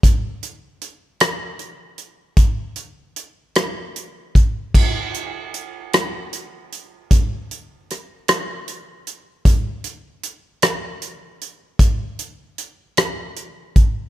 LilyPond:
\new DrumStaff \with { instrumentName = "Drums" } \drummode { \time 6/8 \tempo 4. = 51 <hh bd>8 hh8 hh8 <hh ss>8 hh8 hh8 | <hh bd>8 hh8 hh8 <hh ss>8 hh8 <hh bd>8 | <cymc bd>8 hh8 hh8 <hh ss>8 hh8 hh8 | <hh bd>8 hh8 <hh ss>8 <hh ss>8 hh8 hh8 |
<hh bd>8 hh8 hh8 <hh ss>8 hh8 hh8 | <hh bd>8 hh8 hh8 <hh ss>8 hh8 <hh bd>8 | }